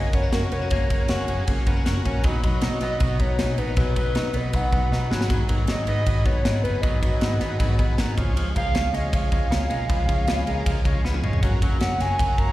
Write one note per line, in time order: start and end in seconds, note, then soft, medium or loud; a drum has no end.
0.00 0.10 F#1 medium
0.00 0.13 C#3 medium
0.00 0.14 F#3 medium
0.00 0.13 A#3 medium
0.00 0.11 C#4 medium
0.00 0.13 C#4 medium
0.00 0.11 F#4 medium
0.00 0.32 F#4 medium
0.00 0.11 G#4 medium
0.00 0.16 D#5 loud
0.12 0.29 F#1 medium
0.12 0.54 F#3 soft
0.12 0.51 A#3 medium
0.12 0.23 B3 medium
0.12 0.50 C#4 medium
0.12 0.30 C#4 medium
0.12 0.30 F#4 medium
0.12 0.31 A#4 medium
0.12 0.32 C#5 medium
0.12 kick medium
0.12 ride medium
0.23 0.52 C#4 medium
0.32 0.48 F#1 medium
0.32 0.49 C#4 medium
0.32 1.10 F#4 medium
0.32 0.49 F#4 medium
0.32 0.50 G#4 medium
0.32 0.54 A#4 medium
0.32 snare loud
0.32 ride medium
0.51 0.67 F1 medium
0.51 0.71 F#3 soft
0.51 0.71 A#3 soft
0.51 0.62 B3 medium
0.51 0.71 C#4 soft
0.51 0.68 C#4 medium
0.51 0.69 F#4 medium
0.51 0.69 A#4 medium
0.51 0.69 C#5 medium
0.51 ride medium
0.62 1.28 C#4 medium
0.70 0.87 F#1 loud
0.70 0.90 F#2 medium
0.70 0.90 C#3 medium
0.70 0.89 F#3 medium
0.70 0.89 A#3 medium
0.70 0.87 C#4 medium
0.70 0.89 C#4 medium
0.70 0.88 F#4 medium
0.70 0.88 A#4 loud
0.70 1.43 C#5 medium
0.70 kick loud
0.70 ride medium
0.90 1.06 F#1 medium
0.90 1.08 F#2 medium
0.90 1.09 C#3 medium
0.90 1.10 F#3 medium
0.90 1.10 A#3 medium
0.90 1.06 C#4 medium
0.90 1.09 C#4 medium
0.90 1.07 F#4 medium
0.90 1.07 A#4 medium
0.90 kick loud
0.90 ride medium
1.08 1.25 F#1 medium
1.08 1.29 F#2 medium
1.08 1.29 C#3 medium
1.08 1.29 F#3 medium
1.08 1.29 A#3 loud
1.08 1.25 C#4 medium
1.08 1.28 C#4 medium
1.08 1.86 F#4 medium
1.08 1.26 F#4 medium
1.08 1.27 A#4 medium
1.08 snare loud
1.08 ride medium
1.27 1.44 F#1 medium
1.27 1.49 A#3 medium
1.27 1.44 C#4 loud
1.27 1.48 C#4 medium
1.27 1.45 F#4 medium
1.27 1.45 G#4 loud
1.27 ride medium
1.32 1.48 F#3 soft
1.47 1.64 F#1 loud
1.47 1.67 C#3 medium
1.47 1.68 F#3 medium
1.47 1.68 A#3 medium
1.47 1.64 C#4 loud
1.47 1.64 F#4 medium
1.47 1.65 G#4 loud
1.47 kick medium
1.47 ride medium
1.51 1.66 C#4 medium
1.66 1.82 F#1 medium
1.66 2.06 A#3 medium
1.66 1.77 B3 medium
1.66 1.83 C#4 medium
1.66 2.04 C#4 medium
1.66 1.83 F#4 medium
1.66 1.84 A#4 loud
1.66 kick medium
1.66 ride medium
1.71 2.08 F#3 medium
1.77 2.05 C#4 medium
1.86 2.02 F#1 medium
1.86 2.02 C#4 medium
1.86 5.37 F#4 medium
1.86 2.03 F#4 medium
1.86 2.03 A#4 loud
1.86 snare medium
1.86 ride medium
2.05 2.21 A#1 medium
2.05 2.25 F#3 medium
2.05 2.25 A#3 medium
2.05 2.25 C#4 medium
2.05 2.22 C#4 medium
2.05 2.22 F#4 medium
2.05 2.23 A#4 loud
2.05 kick medium
2.05 ride medium
2.24 2.40 B1 loud
2.24 2.44 B2 medium
2.24 2.44 F#3 loud
2.24 2.44 B3 loud
2.24 2.41 D#4 loud
2.24 2.43 D#4 loud
2.24 2.41 F#4 medium
2.24 2.42 B4 loud
2.24 kick loud
2.24 ride medium
2.44 2.59 B1 loud
2.44 2.62 B2 medium
2.44 2.63 F#3 medium
2.44 2.63 B3 medium
2.44 2.60 D#4 medium
2.44 2.63 D#4 medium
2.44 2.61 F#4 medium
2.44 2.61 B4 loud
2.44 kick loud
2.44 ride medium
2.61 2.79 B1 medium
2.61 2.82 B2 medium
2.61 2.82 F#3 medium
2.61 2.82 B3 medium
2.61 2.79 D#4 medium
2.61 2.81 D#4 medium
2.61 2.79 F#4 medium
2.61 2.79 C#5 medium
2.61 2.80 D#5 loud
2.61 snare loud
2.61 ride medium
2.81 2.98 B1 loud
2.81 3.02 B3 medium
2.81 2.98 D#4 medium
2.81 3.01 D#4 medium
2.81 2.99 F#4 medium
2.81 2.99 B4 medium
2.81 3.22 D#5 medium
2.81 snare soft
2.81 ride medium
2.85 3.01 F#3 soft
3.00 3.16 B1 loud
3.00 3.20 B2 medium
3.00 3.21 F#3 medium
3.00 3.20 B3 medium
3.00 3.17 D#4 medium
3.00 3.18 D#4 medium
3.00 3.18 F#4 medium
3.00 3.18 C#5 medium
3.00 kick medium
3.00 ride medium
3.19 3.35 B1 medium
3.19 3.60 F#3 soft
3.19 3.59 B3 soft
3.19 3.36 D#4 medium
3.19 3.58 D#4 medium
3.19 3.36 F#4 medium
3.19 3.37 A#4 medium
3.19 3.60 C#5 loud
3.19 kick medium
3.19 ride medium
3.39 3.55 B1 medium
3.39 3.55 D#4 medium
3.39 4.15 D#4 medium
3.39 3.56 F#4 medium
3.39 3.56 G#4 medium
3.39 snare medium
3.39 ride medium
3.58 3.74 A#1 medium
3.58 3.77 F#3 soft
3.58 3.78 B3 soft
3.58 3.77 D#4 medium
3.58 3.74 D#4 medium
3.58 3.75 F#4 medium
3.58 3.76 A#4 medium
3.58 3.76 B4 medium
3.58 ride medium
3.77 3.93 B1 loud
3.77 3.96 B2 medium
3.77 3.96 F#3 medium
3.77 3.96 B3 medium
3.77 3.94 D#4 medium
3.77 3.95 D#4 medium
3.77 3.94 F#4 medium
3.77 3.95 G#4 loud
3.77 3.95 B4 medium
3.77 kick loud
3.77 ride medium
3.96 4.12 B1 loud
3.96 4.14 B2 medium
3.96 4.15 F#3 medium
3.96 4.16 B3 medium
3.96 4.15 D#4 medium
3.96 4.13 D#4 medium
3.96 4.13 F#4 medium
3.96 4.38 B4 medium
3.96 4.14 B4 medium
3.96 kick medium
3.96 ride medium
4.15 4.31 B1 loud
4.15 4.34 B2 medium
4.15 4.35 F#3 medium
4.15 4.35 B3 medium
4.15 4.32 D#4 medium
4.15 4.33 D#4 loud
4.15 4.32 F#4 medium
4.15 4.32 C#5 medium
4.15 snare loud
4.15 ride medium
4.34 4.50 B1 medium
4.34 4.54 F#3 soft
4.34 4.55 B3 soft
4.34 4.51 D#4 medium
4.34 4.54 D#4 medium
4.34 4.51 F#4 medium
4.34 4.52 B4 medium
4.34 4.56 D#5 loud
4.34 ride medium
4.53 4.69 B1 loud
4.53 4.73 B2 medium
4.53 4.74 F#3 medium
4.53 4.74 B3 medium
4.53 4.70 D#4 medium
4.53 4.70 F#4 medium
4.53 4.70 B4 loud
4.53 5.12 F#5 loud
4.53 kick loud
4.53 ride medium
4.57 4.72 D#4 medium
4.72 4.88 B1 loud
4.72 5.12 B3 soft
4.72 4.89 D#4 medium
4.72 5.11 D#4 soft
4.72 4.89 F#4 medium
4.72 4.90 B4 medium
4.72 kick medium
4.72 ride medium
4.76 5.14 F#3 soft
4.91 5.07 B1 loud
4.91 5.08 D#4 medium
4.91 5.68 D#4 medium
4.91 5.08 F#4 medium
4.91 5.09 B4 medium
4.91 snare medium
5.09 5.42 G#1 loud
5.09 5.30 B3 soft
5.09 5.31 D#4 medium
5.09 5.43 F#4 medium
5.09 5.43 G#4 medium
5.09 5.44 B4 medium
5.09 snare medium
5.14 5.30 F#3 soft
5.21 snare medium
5.30 5.49 G#2 medium
5.30 5.50 D#3 medium
5.30 5.50 F#3 loud
5.30 5.49 B3 medium
5.30 5.49 D#4 medium
5.30 kick loud
5.30 hi-hat pedal medium
5.30 ride medium
5.47 5.65 G#1 loud
5.47 5.69 B3 medium
5.47 5.69 D#4 medium
5.47 5.65 F#4 medium
5.47 5.65 G#4 medium
5.47 5.66 A#4 loud
5.47 kick medium
5.47 ride medium
5.51 5.68 G#2 medium
5.51 5.68 D#3 medium
5.51 5.69 F#3 medium
5.67 5.84 G#1 loud
5.67 5.88 G#2 medium
5.67 5.88 D#3 medium
5.67 5.89 F#3 medium
5.67 5.89 B3 medium
5.67 5.87 D#4 loud
5.67 5.84 F#4 medium
5.67 5.85 G#4 medium
5.67 5.85 C#5 medium
5.67 5.87 D#5 loud
5.67 snare loud
5.67 ride medium
5.86 6.03 G#1 medium
5.86 6.08 B3 medium
5.86 6.07 D#4 medium
5.86 6.03 F#4 medium
5.86 6.04 G#4 medium
5.86 6.04 B4 medium
5.86 6.26 D#5 loud
5.86 ride medium
5.91 6.07 F#3 soft
6.06 6.22 G#1 medium
6.06 6.26 D#3 medium
6.06 6.27 F#3 medium
6.06 6.26 B3 medium
6.06 6.25 D#4 medium
6.06 6.23 F#4 medium
6.06 6.23 G#4 medium
6.06 6.24 B4 medium
6.06 kick loud
6.06 ride medium
6.25 6.41 G#1 loud
6.25 6.65 F#3 soft
6.25 6.64 B3 medium
6.25 6.62 D#4 medium
6.25 6.42 F#4 medium
6.25 6.43 G#4 medium
6.25 6.43 B4 medium
6.25 6.63 C#5 loud
6.25 kick medium
6.25 ride soft
6.45 6.61 G#1 medium
6.45 7.21 D#4 medium
6.45 6.61 F#4 medium
6.45 6.62 G#4 medium
6.45 6.62 B4 medium
6.45 snare loud
6.45 ride medium
6.63 6.80 F#1 medium
6.63 6.83 F#3 soft
6.63 6.84 B3 soft
6.63 6.83 D#4 medium
6.63 6.80 F#4 medium
6.63 6.81 G#4 medium
6.63 6.81 B4 loud
6.63 6.81 B4 medium
6.63 ride medium
6.82 6.99 G#1 loud
6.82 7.02 G#2 medium
6.82 7.03 D#3 medium
6.82 7.03 F#3 medium
6.82 7.02 B3 medium
6.82 7.01 D#4 medium
6.82 6.99 F#4 medium
6.82 6.99 G#4 medium
6.82 7.00 C#5 loud
6.82 7.00 D#5 loud
6.82 kick loud
6.82 ride medium
7.01 7.18 G#1 medium
7.01 7.21 G#2 medium
7.01 7.21 D#3 medium
7.01 7.22 F#3 medium
7.01 7.22 B3 medium
7.01 7.22 D#4 medium
7.01 7.18 F#4 medium
7.01 7.18 G#4 medium
7.01 7.19 B4 medium
7.01 8.12 D#5 loud
7.01 kick loud
7.01 ride medium
7.20 7.37 G#1 medium
7.20 7.41 G#2 medium
7.20 7.41 D#3 medium
7.20 7.41 F#3 medium
7.20 7.41 B3 medium
7.20 7.40 D#4 medium
7.20 7.37 F#4 medium
7.20 7.38 G#4 medium
7.20 7.38 B4 medium
7.20 snare loud
7.20 ride medium
7.40 7.56 G#1 medium
7.40 7.61 B3 soft
7.40 7.60 D#4 medium
7.40 7.56 F#4 medium
7.40 7.57 G#4 medium
7.40 7.57 B4 medium
7.40 snare soft
7.40 ride medium
7.44 7.60 F#3 soft
7.58 7.76 G#1 loud
7.58 7.79 D#3 medium
7.58 7.80 F#3 medium
7.58 7.75 F#4 loud
7.58 7.76 G#4 loud
7.58 7.76 B4 loud
7.58 kick loud
7.58 ride medium
7.62 7.79 B3 medium
7.62 7.78 D#4 medium
7.78 7.95 G#1 loud
7.78 8.19 F#3 soft
7.78 8.18 B3 medium
7.78 8.17 D#4 medium
7.78 7.95 F#4 medium
7.78 7.95 G#4 medium
7.78 7.96 B4 loud
7.78 kick medium
7.78 ride medium
7.98 8.13 G#1 loud
7.98 8.21 D#4 medium
7.98 8.14 F#4 medium
7.98 8.15 G#4 medium
7.98 8.15 A#4 medium
7.98 snare loud
7.98 ride medium
8.16 8.49 C#2 loud
8.16 8.36 G#3 medium
8.16 8.36 C#4 medium
8.16 8.49 F4 medium
8.16 8.50 G#4 medium
8.16 8.50 C#5 loud
8.16 kick loud
8.16 ride medium
8.20 8.35 F3 medium
8.36 8.55 C#3 medium
8.36 8.56 F3 loud
8.36 8.55 G#3 loud
8.36 8.55 C#4 loud
8.36 ride medium
8.55 8.71 C#2 loud
8.55 8.73 C#3 medium
8.55 8.74 F3 medium
8.55 8.74 G#3 medium
8.55 8.75 C#4 medium
8.55 8.71 F4 medium
8.55 8.72 G#4 medium
8.55 8.72 A#4 medium
8.55 8.96 F5 loud
8.55 kick loud
8.55 ride medium
8.73 8.90 C#2 medium
8.73 8.94 C#3 medium
8.73 8.94 F3 medium
8.73 8.94 G#3 medium
8.73 8.92 C#4 medium
8.73 8.90 F4 medium
8.73 8.91 G#4 medium
8.73 8.91 C#5 medium
8.73 snare loud
8.73 ride medium
8.93 9.09 C#2 medium
8.93 9.12 F3 soft
8.93 9.13 G#3 soft
8.93 9.13 C#4 medium
8.93 9.10 F4 medium
8.93 9.11 G#4 medium
8.93 9.11 C#5 medium
8.93 9.16 D#5 loud
8.93 snare soft
8.93 ride medium
9.12 9.28 C#2 medium
9.12 9.32 C#3 medium
9.12 9.32 F3 medium
9.12 9.32 G#3 medium
9.12 9.31 C#4 medium
9.12 9.29 F4 medium
9.12 9.29 G#4 medium
9.12 9.30 C#5 loud
9.12 9.70 F5 loud
9.12 kick loud
9.12 ride medium
9.32 9.48 C#2 medium
9.32 9.72 F3 soft
9.32 9.70 G#3 medium
9.32 9.69 C#4 medium
9.32 9.48 F4 medium
9.32 9.49 G#4 medium
9.32 9.49 C#5 medium
9.32 kick medium
9.32 ride medium
9.50 9.67 C#2 loud
9.50 10.28 C#4 medium
9.50 9.67 F4 medium
9.50 9.68 G#4 medium
9.50 9.68 A#4 medium
9.50 snare loud
9.50 ride medium
9.70 9.86 B1 medium
9.70 9.88 F3 soft
9.70 9.89 G#3 medium
9.70 9.89 C#4 medium
9.70 9.86 F4 medium
9.70 9.87 G#4 medium
9.70 9.87 A#4 medium
9.70 11.01 F5 loud
9.70 ride medium
9.89 10.05 C#2 loud
9.89 10.08 C#3 medium
9.89 10.07 F3 medium
9.89 10.07 G#3 medium
9.89 10.06 C#4 medium
9.89 10.05 F4 loud
9.89 10.06 G#4 medium
9.89 10.06 B4 loud
9.89 kick loud
9.89 ride medium
10.07 10.24 C#2 loud
10.07 10.26 C#3 medium
10.07 10.26 F3 medium
10.07 10.27 G#3 medium
10.07 10.27 C#4 medium
10.07 10.25 F4 medium
10.07 10.25 G#4 medium
10.07 10.26 C#5 medium
10.07 kick loud
10.07 ride medium
10.27 10.43 C#2 medium
10.27 10.46 C#3 medium
10.27 10.47 F3 medium
10.27 10.47 G#3 loud
10.27 10.46 C#4 loud
10.27 10.44 F4 medium
10.27 10.44 G#4 medium
10.27 10.45 B4 loud
10.27 snare loud
10.27 ride medium
10.46 10.62 C#2 medium
10.46 10.66 F3 medium
10.46 10.66 G#3 medium
10.46 10.66 C#4 medium
10.46 10.63 F4 medium
10.46 10.64 G#4 medium
10.46 10.64 A#4 medium
10.46 ride medium
10.65 10.82 C#2 loud
10.65 10.85 C#3 medium
10.65 10.86 F3 medium
10.65 10.85 G#3 medium
10.65 10.84 C#4 medium
10.65 10.82 F4 loud
10.65 10.83 G#4 medium
10.65 10.83 A#4 loud
10.65 kick loud
10.65 ride medium
10.85 11.01 C#2 medium
10.85 11.24 F3 soft
10.85 11.23 G#3 medium
10.85 11.22 C#4 medium
10.85 11.01 F4 medium
10.85 11.02 G#4 medium
10.85 11.02 C#5 loud
10.85 kick medium
10.85 ride medium
11.04 11.20 C#2 medium
11.04 11.15 B3 medium
11.04 11.21 F4 medium
11.04 11.21 G#4 medium
11.04 11.22 B4 medium
11.04 snare medium
11.14 11.47 C#4 medium
11.14 high tom medium
11.22 11.39 F1 medium
11.22 11.43 F3 medium
11.22 11.43 G#3 medium
11.22 11.42 C#4 medium
11.22 11.39 F4 medium
11.22 11.40 G#4 medium
11.22 11.40 C#5 medium
11.22 mid tom medium
11.33 floor tom medium
11.42 11.58 F#1 loud
11.42 11.61 F#2 medium
11.42 11.62 C#3 medium
11.42 11.62 F#3 medium
11.42 11.62 A#3 loud
11.42 11.61 C#4 loud
11.42 11.59 F#4 loud
11.42 11.59 A#4 loud
11.42 11.60 C#5 loud
11.42 kick loud
11.42 hi-hat pedal medium
11.42 ride medium
11.61 11.78 F#1 loud
11.61 11.80 F#2 medium
11.61 11.80 C#3 medium
11.61 11.81 F#3 medium
11.61 11.81 A#3 medium
11.61 11.81 C#4 medium
11.61 11.78 F#4 medium
11.61 11.78 A#4 medium
11.61 11.79 C#5 loud
11.61 kick loud
11.61 ride medium
11.80 11.97 F#1 medium
11.80 12.00 F#2 medium
11.80 12.00 C#3 medium
11.80 12.01 F#3 medium
11.80 12.01 A#3 medium
11.80 12.00 C#4 medium
11.80 11.97 F#4 medium
11.80 11.97 A#4 medium
11.80 11.98 C#5 medium
11.80 12.02 F#5 medium
11.80 snare loud
11.80 ride medium
12.00 12.16 F#1 loud
12.00 12.20 A#3 soft
12.00 12.20 C#4 medium
12.00 12.16 F#4 medium
12.00 12.16 A#4 medium
12.00 12.17 C#5 medium
12.00 12.40 G#5 loud
12.00 snare soft
12.00 ride medium
12.04 12.20 F#3 soft
12.19 12.35 F#1 medium
12.19 12.39 C#3 medium
12.19 12.39 F#3 medium
12.19 12.39 A#3 medium
12.19 12.37 C#4 medium
12.19 12.35 F#4 medium
12.19 12.36 A#4 medium
12.19 12.36 C#5 loud
12.19 kick loud
12.19 ride medium
12.38 12.52 F#1 medium
12.38 12.52 F#3 soft
12.38 12.52 A#3 soft
12.38 12.52 C#4 medium
12.38 12.52 F#4 medium
12.38 12.52 A#4 medium
12.38 12.52 C#5 medium
12.38 12.52 A#5 loud
12.38 kick medium
12.38 ride medium